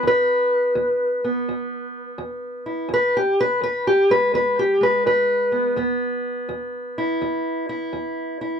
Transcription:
steel-string acoustic guitar
Already playing: B3
0.03 E2
0.07 B4
0.75 E2
1.24 B3
1.49 E2
2.18 E2
2.66 E4
2.89 E2
2.94 B4
3.17 G4
3.40 B4
3.61 E2 B4
3.87 G4
4.10 G#3 B4
4.34 E2 B4
4.59 G4
4.81 G#3 B4
5.06 E2 B4
5.52 B3
5.76 E2 B3
6.49 E2
6.98 E4
7.22 E2
7.69 E4
7.93 E2
8.41 E4

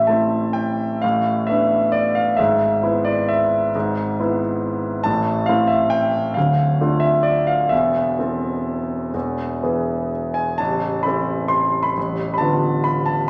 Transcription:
grand piano
Already playing: A1 A2 E5
0.07 A3 C4 E4 A5
0.53 G5
1.01 A1 A2 F5
1.47 B3 D4 E5
1.92 D5
2.15 F5
2.37 G#1 G#2 E5
2.83 B3 E4
3.05 D5
3.29 E5
3.75 G#1 G#2
4.20 B3 E4
5.04 A1 A2 A5
5.46 A3 C4 E4 F5
5.67 E5
5.90 G5
6.34 D1 D2 F5
6.81 A3 D4 F4
7.00 E5
7.23 D5
7.47 F5
7.69 E1 E2 E5
8.19 E3 C4 A4
9.14 E1 E2
9.63 E3 B3 G#4
10.34 G#5
10.58 A0 A1 A5
11.03 E3 C4 A4 B5
11.48 C6
11.83 B5
11.97 A0 A1
12.34 B5
12.38 D3 B3 F4 A5
12.84 B5
13.06 A5

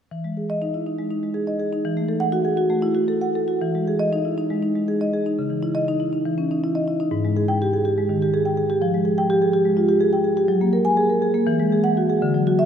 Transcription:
marimba
0.11 E3
0.24 G#3
0.37 G#4
0.50 D#5
0.62 D#4
0.74 E4
0.86 D#4
0.98 G#3
1.11 D#4
1.23 G#3
1.34 G#4
1.47 D#5
1.60 G#4
1.73 D#4
1.85 E3
1.97 A3
2.09 A4
2.20 F#5
2.32 F#4
2.45 G#4
2.57 F#4
2.70 A3
2.82 E4
2.95 F#4
3.08 A4
3.21 F#5
3.35 A4
3.48 F#4
3.61 E3
3.75 G#3
3.88 G#4
3.99 D#5
4.13 D#4
4.25 E4
4.38 D#4
4.50 G#3
4.63 D#4
4.76 G#3
4.88 G#4
5.01 D#5
5.14 G#4
5.26 D#4
5.39 C#3
5.50 E3
5.63 E4
5.75 D#5
5.88 D#4
6.00 E4
6.13 D#4
6.26 E3
6.38 C#4
6.51 D#4
6.64 E4
6.75 D#5
6.88 E4
7.00 D#4
7.11 G#2
7.25 G#3
7.37 G#4
7.48 G5
7.62 G4
7.73 G#4
7.85 G4
7.98 G#3
8.09 D#3
8.22 G4
8.34 G#4
8.45 G5
8.57 G#4
8.70 G4
8.82 F3
8.94 G#3
9.05 G#4
9.18 G5
9.30 G4
9.42 G#4
9.53 G4
9.65 G#3
9.77 F4
9.89 G4
10.01 G#4
10.13 G5
10.24 G#4
10.37 G4
10.48 F#3
10.61 A#3
10.73 A#4
10.85 G#5
10.97 G#4
11.10 A#4
11.22 G#4
11.34 A#3
11.47 E3
11.60 G#3
11.72 G#4
11.84 F#5
11.97 F#4
12.10 G#4
12.22 D3
12.35 F#3
12.47 F#4
12.59 E5

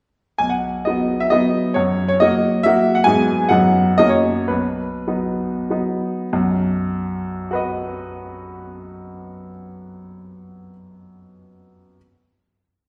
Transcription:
grand piano
0.38 B1 G#5
0.49 F#5
0.85 F#3 B3 D#4 D#5
1.20 E5
1.30 F#3 B3 D#4 D#5
1.74 F#2 C#5
2.08 C#5
2.20 F#3 A#3 F#4 D#5
2.63 F#3 A#3 F#4 E5
2.95 F#5
3.04 G#2 F#3 B3 D#4 G#5
3.49 F#2 F#3 B3 D#4 F#5
3.98 F#2 F#3 A#3 C#4 D#5
4.09 C#5
4.48 B1 B4
5.08 F#3 B3 D#4
5.70 F#3 B3 D#4
6.33 B1 F#2
7.51 F#4 B4
7.55 D#5

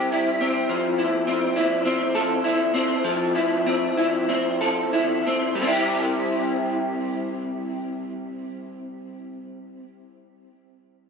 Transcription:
clean electric guitar
Already playing: G3 C4 E4 G4
0.12 E4
0.41 C4
0.69 F3
0.98 E4
1.27 C4
1.56 E4
1.85 C4
2.15 A4
2.44 E4
2.74 C4
3.04 F3
3.35 E4
3.66 C4
3.97 E4
4.29 C4
4.61 A4
4.93 E4
5.26 C4
5.55 G3
5.62 C4
5.67 E4
5.72 G4

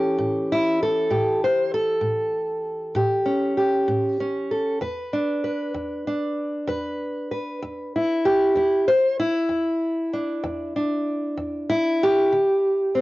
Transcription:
steel-string acoustic guitar
Already playing: E3 C#4 G4 A4
0.19 A2
0.52 E4
0.83 A4
1.10 A2 G4
1.44 C5
1.74 A4
2.01 A2
2.95 A2 G4
3.26 C#4
3.57 G4
3.88 A2
4.20 C#4
4.51 A4
4.81 E2 B4
5.13 D4
5.44 B4
5.74 E2
6.07 D4
6.67 E2 B4
7.31 B4
7.62 E2
7.96 E4
8.25 G4
8.55 E2 E4
8.88 C5
9.20 E4
9.49 E2
10.13 D4
10.43 E2
10.76 D4
11.38 E2
11.70 E4
12.03 G4
12.32 D3
12.95 C4

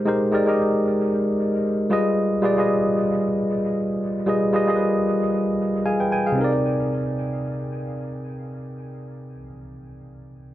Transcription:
tine electric piano
Already playing: G#3 D#4 G4 A#4 C5
0.05 G#3 D#4 G4 A#4 C5
0.32 G#3 D#4 G4 A#4 D5
0.46 G#3 D#4 G4 A#4 D#5
1.90 G3 F4 G#4 B4 D#5
2.42 G3 F4 G#4 B4 D5
2.57 G3 F4 G#4 B4 D#5
4.26 G3 F4 G#4 B4 D#5
4.53 G3 F4 G#4 B4 D#5
4.67 G3 F4 G#4 A#4 D#5
4.76 B4
5.86 G#4 F5 G#5
6.00 B4 G5
6.12 B4 G5 G#5
6.27 G#4 F5
6.32 C3 C4
6.38 D#4 A#4
6.44 D5

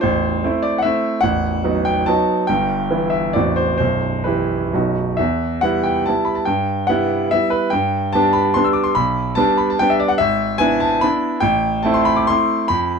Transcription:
grand piano
0.01 A0 A1 C5
0.44 A3 C4 E4
0.62 D5
0.78 E5 F#5
0.85 A3 C4 E4
1.21 A0 A1 F#5
1.64 F#3 B3 D#4
1.85 G5
2.06 F#3 B3 D#4 A5
2.47 G1 G2 G5
2.91 E3 B3 E4
3.10 E5
3.33 A0 A1 E3 C4 F#4 D5
3.56 C5
3.78 B0 B1 C5
4.24 E3 E4 G4 B4
4.73 B0 B1 F#3 D#4 F#4
5.17 E2 E5
5.61 G3 B3 E4 F#5
5.83 G5
6.06 G3 B3 E4 A5
6.25 B5
6.35 A5
6.45 G2 G5
6.87 G3 B3 E4 F#5
7.31 G3 B3 E4 E5
7.50 B4
7.70 G2 G5
8.13 G3 B3 D4 A5
8.33 B5
8.54 G3 B3 D4 C6
8.64 E6
8.73 D6
8.84 C6
8.95 B1 B5
9.35 G3 B3 D4 A5
9.57 B5
9.70 A5
9.79 G3 B3 D4 G5
9.90 E5
10.00 D5
10.08 F#5
10.18 G#1 E5
10.58 B3 D4 E4 G#5
10.80 A5
11.01 B3 D4 E4 B5
11.40 A1 G5
11.83 A3 C4 E4 A5
11.94 C6
12.05 B5
12.16 D6
12.27 A3 C4 E4 C6
12.68 F2 B5

